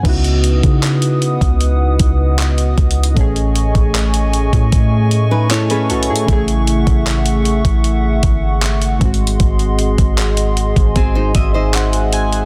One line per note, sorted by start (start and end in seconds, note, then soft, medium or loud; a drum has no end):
0.03 0.61 C#2 loud
0.03 3.12 C#3 medium
0.03 3.12 B3 medium
0.03 3.13 D#4 medium
0.03 3.14 B4 medium
0.03 6.25 D#5 medium
0.03 3.14 F#5 medium
0.03 3.14 D#6 medium
0.03 kick loud
0.03 closed hi-hat medium
0.03 crash medium
0.07 3.14 E4 medium
0.07 3.15 F#4 medium
0.24 closed hi-hat medium
0.44 closed hi-hat medium
0.63 1.38 C#3 loud
0.63 kick medium
0.63 closed hi-hat soft
0.83 clap loud
0.83 closed hi-hat medium
1.02 closed hi-hat medium
1.22 closed hi-hat soft
1.41 1.98 C#2 loud
1.41 kick medium
1.41 closed hi-hat medium
1.61 closed hi-hat medium
1.99 2.75 C#2 loud
1.99 kick medium
1.99 closed hi-hat medium
2.38 clap loud
2.38 closed hi-hat medium
2.58 closed hi-hat soft
2.78 3.15 C#2 loud
2.78 kick medium
2.78 closed hi-hat soft
2.91 closed hi-hat medium
3.03 closed hi-hat medium
3.14 3.73 A1 loud
3.14 6.23 A2 medium
3.14 6.24 A3 medium
3.14 8.97 A3 medium
3.14 6.25 G#5 medium
3.14 8.97 C#6 medium
3.14 kick loud
3.14 closed hi-hat medium
3.18 6.25 C#4 medium
3.18 5.48 G#4 medium
3.36 closed hi-hat soft
3.56 closed hi-hat medium
3.75 4.50 A1 loud
3.75 kick medium
3.75 closed hi-hat soft
3.95 clap loud
3.95 closed hi-hat medium
4.14 closed hi-hat medium
4.33 closed hi-hat soft
4.53 5.91 A2 loud
4.53 kick medium
4.53 closed hi-hat soft
4.72 kick medium
4.72 closed hi-hat medium
5.11 closed hi-hat medium
5.31 5.50 D#4 medium
5.31 5.50 B4 medium
5.50 5.70 E4 medium
5.50 5.70 A4 medium
5.50 5.69 C#5 medium
5.50 clap loud
5.50 closed hi-hat medium
5.70 6.26 C#4 medium
5.70 5.89 G#4 medium
5.70 6.26 A4 medium
5.70 5.89 B4 medium
5.70 closed hi-hat soft
5.90 6.11 B1 loud
5.90 6.09 F#4 medium
5.90 6.08 A4 medium
5.90 closed hi-hat soft
6.03 closed hi-hat medium
6.09 6.28 A2 loud
6.09 6.29 E4 medium
6.09 6.31 G#4 medium
6.16 closed hi-hat medium
6.26 6.85 A1 loud
6.26 8.96 C#3 medium
6.26 8.97 A3 medium
6.26 8.98 E4 medium
6.26 8.98 E5 medium
6.26 10.53 F#5 medium
6.26 kick loud
6.26 closed hi-hat medium
6.32 8.99 G#4 medium
6.48 closed hi-hat medium
6.67 closed hi-hat medium
6.87 7.62 A1 loud
6.87 kick medium
6.87 closed hi-hat soft
7.06 clap loud
7.06 closed hi-hat medium
7.26 closed hi-hat medium
7.45 closed hi-hat soft
7.65 8.21 A1 loud
7.65 kick medium
7.65 closed hi-hat soft
7.84 closed hi-hat medium
8.23 8.98 G#1 loud
8.23 kick medium
8.23 closed hi-hat medium
8.62 clap loud
8.62 closed hi-hat medium
8.82 closed hi-hat soft
8.99 9.39 G#1 loud
8.99 12.08 G#2 medium
8.99 12.09 G#3 medium
8.99 12.45 G#4 medium
8.99 12.45 D#5 medium
8.99 12.45 C6 medium
8.99 kick medium
8.99 closed hi-hat soft
9.03 12.10 C4 medium
9.03 12.11 F#4 medium
9.14 closed hi-hat medium
9.27 closed hi-hat medium
9.40 9.96 G#1 loud
9.40 kick loud
9.40 closed hi-hat medium
9.59 closed hi-hat medium
9.79 closed hi-hat medium
9.98 10.73 G#1 medium
9.98 kick medium
9.98 closed hi-hat soft
10.18 clap loud
10.18 closed hi-hat medium
10.37 closed hi-hat medium
10.56 12.45 G#5 medium
10.56 closed hi-hat medium
10.76 11.33 G#1 loud
10.76 kick medium
10.76 closed hi-hat soft
10.96 11.15 C4 medium
10.96 11.14 G#4 medium
10.96 kick medium
10.96 closed hi-hat medium
11.15 11.34 D#4 medium
11.15 11.34 C5 medium
11.35 12.45 G#1 loud
11.35 11.54 F#4 medium
11.35 11.53 D#5 medium
11.35 11.53 E5 medium
11.35 kick medium
11.35 closed hi-hat medium
11.54 12.45 D#4 medium
11.54 12.45 C5 medium
11.54 11.73 D#5 medium
11.73 12.11 F#5 medium
11.73 clap loud
11.73 closed hi-hat medium
11.93 closed hi-hat soft
12.13 12.45 G#5 medium
12.13 closed hi-hat medium
12.33 closed hi-hat soft